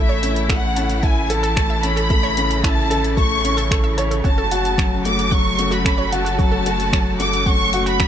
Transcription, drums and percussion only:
0.23 closed hi-hat medium
0.36 closed hi-hat soft
0.49 finger snap loud
0.49 kick loud
0.49 closed hi-hat soft
0.76 closed hi-hat medium
0.90 closed hi-hat soft
1.03 kick loud
1.03 closed hi-hat soft
1.30 closed hi-hat medium
1.44 closed hi-hat soft
1.57 finger snap loud
1.57 kick loud
1.57 closed hi-hat soft
1.83 closed hi-hat medium
1.97 closed hi-hat soft
2.10 kick loud
2.10 closed hi-hat soft
2.37 closed hi-hat medium
2.51 closed hi-hat soft
2.64 finger snap medium
2.64 kick loud
2.64 closed hi-hat soft
2.91 closed hi-hat medium
3.04 closed hi-hat soft
3.17 kick loud
3.17 closed hi-hat soft
3.45 closed hi-hat medium
3.58 closed hi-hat soft
3.71 finger snap medium
3.71 kick loud
3.71 closed hi-hat soft
3.98 closed hi-hat medium
4.11 closed hi-hat soft
4.24 kick loud
4.24 closed hi-hat soft
4.51 closed hi-hat medium
4.65 closed hi-hat soft
4.78 finger snap medium
4.78 kick loud
4.78 closed hi-hat soft
5.05 closed hi-hat medium
5.19 closed hi-hat soft
5.32 kick loud
5.32 closed hi-hat soft
5.59 closed hi-hat medium
5.72 closed hi-hat soft
5.85 finger snap medium
5.85 kick loud
5.85 closed hi-hat soft
6.12 closed hi-hat medium
6.26 closed hi-hat soft
6.39 kick loud
6.39 closed hi-hat soft
6.66 closed hi-hat medium
6.80 closed hi-hat soft
6.93 finger snap medium
6.93 kick loud
6.93 closed hi-hat soft
7.20 closed hi-hat medium
7.33 closed hi-hat soft
7.46 kick loud
7.46 closed hi-hat soft
7.73 closed hi-hat medium
7.87 closed hi-hat soft
8.00 finger snap medium
8.00 kick loud
8.00 closed hi-hat soft

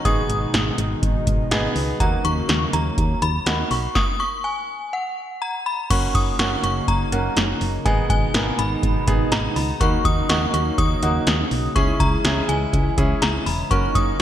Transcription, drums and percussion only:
0.05 kick loud
0.05 closed hi-hat medium
0.30 closed hi-hat medium
0.54 snare loud
0.54 closed hi-hat medium
0.78 closed hi-hat medium
1.03 kick medium
1.03 closed hi-hat medium
1.27 kick medium
1.27 closed hi-hat medium
1.51 snare loud
1.51 closed hi-hat medium
1.76 open hi-hat medium
2.00 kick loud
2.00 closed hi-hat medium
2.25 closed hi-hat medium
2.49 snare loud
2.49 closed hi-hat medium
2.73 closed hi-hat medium
2.98 kick medium
2.98 closed hi-hat medium
3.22 closed hi-hat medium
3.46 snare loud
3.46 closed hi-hat medium
3.71 open hi-hat medium
3.95 kick loud
3.95 snare medium
5.90 kick loud
5.90 closed hi-hat medium
5.90 crash loud
6.15 kick loud
6.15 closed hi-hat medium
6.39 snare loud
6.39 closed hi-hat medium
6.64 closed hi-hat medium
6.88 kick medium
6.88 closed hi-hat medium
7.12 closed hi-hat medium
7.37 snare loud
7.37 closed hi-hat medium
7.61 open hi-hat medium
7.86 kick loud
7.86 closed hi-hat medium
8.10 kick loud
8.10 closed hi-hat medium
8.34 snare loud
8.34 closed hi-hat medium
8.59 closed hi-hat medium
8.83 kick medium
8.83 closed hi-hat medium
9.08 kick medium
9.08 closed hi-hat medium
9.32 snare loud
9.32 closed hi-hat medium
9.56 open hi-hat medium
9.81 kick loud
9.81 closed hi-hat medium
10.05 kick loud
10.05 closed hi-hat medium
10.29 snare loud
10.29 closed hi-hat medium
10.54 closed hi-hat medium
10.78 kick medium
10.78 closed hi-hat medium
11.03 closed hi-hat medium
11.27 snare loud
11.27 closed hi-hat medium
11.51 open hi-hat medium
11.76 kick loud
11.76 closed hi-hat medium
12.00 kick medium
12.00 closed hi-hat medium
12.25 snare loud
12.25 closed hi-hat medium
12.49 closed hi-hat medium
12.73 kick medium
12.73 closed hi-hat medium
12.98 kick medium
12.98 closed hi-hat medium
13.22 snare loud
13.22 closed hi-hat medium
13.46 open hi-hat medium
13.71 kick loud
13.71 closed hi-hat medium
13.95 kick medium
13.95 closed hi-hat medium

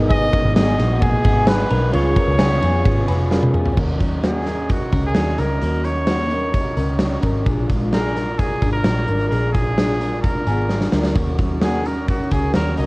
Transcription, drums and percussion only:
0.10 kick loud
0.10 ride medium
0.33 kick medium
0.33 ride medium
0.56 snare loud
0.56 ride medium
0.79 snare soft
0.79 ride medium
1.02 kick loud
1.02 ride medium
1.25 kick medium
1.25 ride medium
1.47 snare loud
1.47 ride medium
1.70 ride medium
1.93 ride medium
2.16 kick medium
2.16 ride medium
2.39 snare loud
2.39 ride medium
2.62 ride medium
2.85 kick medium
2.85 ride medium
3.08 ride medium
3.31 snare medium
3.43 high tom medium
3.54 mid tom medium
3.66 floor tom medium
3.77 kick loud
3.77 crash medium
4.00 kick medium
4.00 closed hi-hat medium
4.23 snare medium
4.23 closed hi-hat medium
4.46 snare soft
4.46 closed hi-hat medium
4.69 kick medium
4.69 closed hi-hat medium
4.92 kick medium
4.92 closed hi-hat medium
5.15 snare loud
5.15 closed hi-hat medium
5.38 closed hi-hat medium
5.61 closed hi-hat medium
5.84 closed hi-hat medium
6.07 snare loud
6.07 closed hi-hat medium
6.30 closed hi-hat medium
6.54 kick medium
6.54 closed hi-hat medium
6.77 closed hi-hat medium
6.99 snare loud
6.99 closed hi-hat medium
7.23 kick medium
7.23 closed hi-hat medium
7.46 kick loud
7.46 closed hi-hat medium
7.70 kick medium
7.70 closed hi-hat medium
7.93 snare loud
7.93 closed hi-hat medium
8.16 snare soft
8.16 closed hi-hat medium
8.39 kick medium
8.39 closed hi-hat medium
8.62 kick medium
8.62 closed hi-hat medium
8.84 snare loud
8.84 closed hi-hat medium
9.08 closed hi-hat medium
9.31 closed hi-hat medium
9.54 kick medium
9.54 closed hi-hat medium
9.78 snare medium
9.78 closed hi-hat medium
10.01 closed hi-hat medium
10.24 kick medium
10.24 closed hi-hat medium
10.47 closed hi-hat medium
10.69 snare soft
10.81 snare medium
10.92 snare medium
11.04 snare medium
11.15 kick loud
11.15 closed hi-hat medium
11.38 kick medium
11.38 closed hi-hat medium
11.61 snare loud
11.61 closed hi-hat medium
11.85 closed hi-hat medium
12.08 kick medium
12.08 closed hi-hat medium
12.31 kick medium
12.31 closed hi-hat medium
12.54 snare medium
12.54 closed hi-hat medium
12.77 closed hi-hat medium

